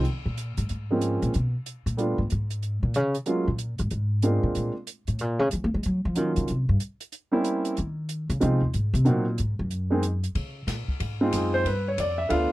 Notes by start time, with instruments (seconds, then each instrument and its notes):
0.05 closed hi-hat
0.26 upright bass A#2
0.37 closed hi-hat
0.57 upright bass G#2, closed hi-hat
0.69 upright bass G#2, closed hi-hat
0.91 grand piano F3 G#3 A#3 C4 C#4
1.01 closed hi-hat
1.22 upright bass A#2, closed hi-hat
1.34 upright bass B2, closed hi-hat
1.66 closed hi-hat
1.86 upright bass A#2, closed hi-hat
1.97 grand piano G3 A3 B3 D4 F4, closed hi-hat
2.18 upright bass G#2
2.30 upright bass G#2, closed hi-hat
2.50 closed hi-hat
2.62 closed hi-hat
2.83 upright bass A#2
2.94 upright bass C#3, closed hi-hat
3.14 closed hi-hat
3.26 grand piano F#3 G#3 A#3 C#4 F4, closed hi-hat
3.48 upright bass A#2
3.58 closed hi-hat
3.78 upright bass G#2, closed hi-hat
3.90 upright bass G#2, closed hi-hat
4.22 grand piano G#3 A#3 C4 D4 F4, closed hi-hat
4.43 upright bass A#2
4.55 upright bass A#2, closed hi-hat
4.87 closed hi-hat
5.07 upright bass A2, closed hi-hat
5.19 upright bass A#2, closed hi-hat
5.39 upright bass C#3
5.51 upright bass F3, closed hi-hat
5.64 upright bass A#3
5.74 upright bass G#3
5.83 upright bass F#3, closed hi-hat
6.05 upright bass F3
6.15 upright bass D#3, grand piano F#3 A#3 C#4 D#4 F4, closed hi-hat
6.36 upright bass C#3, closed hi-hat
6.48 upright bass C3, closed hi-hat
6.69 upright bass G2
6.80 closed hi-hat
7.00 closed hi-hat
7.12 closed hi-hat
7.31 grand piano G3 A#3 C4 C#4 E4
7.44 closed hi-hat
7.65 closed hi-hat
7.77 upright bass D#3, closed hi-hat
8.09 closed hi-hat
8.30 upright bass C#3, closed hi-hat
8.40 upright bass C3, grand piano F3 G#3 C4 D#4 F4, closed hi-hat
8.61 upright bass D#2
8.74 upright bass G#2, closed hi-hat
8.94 upright bass C3, closed hi-hat
9.05 upright bass A#2, grand piano F#3 A#3 C4 D#4 F#4, closed hi-hat
9.38 upright bass G#2, closed hi-hat
9.59 upright bass F#2
9.70 closed hi-hat
9.90 grand piano G#3 A#3 C4 D#4 G#4
10.03 closed hi-hat
10.23 closed hi-hat
10.35 upright bass C#3, ride
10.67 upright bass A#2, snare, hi-hat pedal, ride
10.88 muted upright bass stroke, kick
11.00 upright bass G#2, ride
11.21 grand piano G#3 C4 D#4 F4
11.32 upright bass F#2, grand piano G#4, hi-hat pedal, ride
11.54 grand piano C5
11.65 upright bass G2, grand piano B4, ride
11.88 grand piano C#5
11.98 upright bass F2, grand piano D5, hi-hat pedal, ride
12.18 grand piano E5
12.29 upright bass D2, grand piano A3 B3 D4 F4 F5, ride